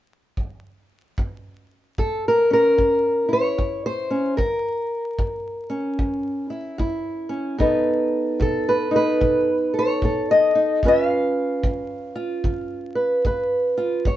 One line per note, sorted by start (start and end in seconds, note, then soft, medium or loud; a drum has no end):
0.37 kick soft
1.18 1.92 F#2 medium
1.18 kick medium
1.98 2.72 F#2 medium
1.98 2.25 A4 medium
1.98 kick medium
2.28 2.52 A#4 medium
2.50 4.09 C#4 soft
2.50 3.33 A#4 medium
2.78 3.52 F#2 medium
2.78 kick medium
3.29 4.35 E4 soft
3.33 3.85 C#5 medium
3.58 4.33 F#2 medium
3.58 kick medium
3.86 4.37 C5 medium
4.10 4.36 C#4 soft
4.37 5.13 F#2 medium
4.37 7.60 A#4 medium
4.37 kick medium
5.19 5.94 F#2 medium
5.19 kick medium
5.70 7.28 C#4 soft
5.99 6.74 F#2 medium
5.99 kick medium
6.50 6.78 E4 soft
6.78 7.54 F#2 medium
6.78 7.57 E4 soft
6.78 kick soft
7.29 7.56 C#4 soft
7.58 8.34 B2 medium
7.58 10.79 B3 soft
7.58 8.90 D#4 soft
7.58 8.41 A4 soft
7.58 8.68 B4 soft
7.58 kick medium
8.40 9.15 B2 medium
8.40 9.49 A4 medium
8.40 kick medium
8.69 8.95 B4 medium
8.91 10.53 D#4 soft
8.96 9.76 B4 medium
9.21 9.96 B2 medium
9.21 kick medium
9.74 10.03 A4 soft
9.79 10.31 C#5 medium
10.02 10.78 B2 medium
10.02 10.81 A4 soft
10.02 kick medium
10.31 10.84 D#5 medium
10.55 10.81 D#4 soft
10.83 11.58 C#3 medium
10.83 14.02 C#4 soft
10.83 12.14 F4 soft
10.83 12.94 B4 soft
10.83 kick medium
10.88 11.06 E5 medium
11.06 14.07 F5 medium
11.63 12.38 C#3 medium
11.63 kick medium
12.16 13.76 F4 soft
12.44 13.19 C#3 medium
12.44 kick medium
12.95 13.25 B4 soft
13.25 13.99 C#3 medium
13.25 14.02 B4 soft
13.25 kick medium
13.78 14.03 F4 soft
14.05 14.17 F#2 medium
14.05 14.17 C#5 soft
14.05 kick medium